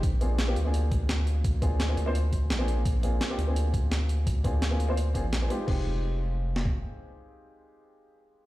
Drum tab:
CC |----------------|----------------|----------------|----------------|
HH |x-x-x-x-x-x-x-x-|x-x-x-x-x-x-x-x-|x-x-x-x-x-x-x-x-|x-x-x-x-x-x-x-x-|
SD |----o-------o---|----o-------o---|----o-------o---|----o-------o---|
BD |o---------o-----|o-o-------o-----|o---------o-----|o-o-------o-----|

CC |x---------------|----------------|
HH |----------------|----------------|
SD |----------o-----|----------------|
BD |o----------o----|----------------|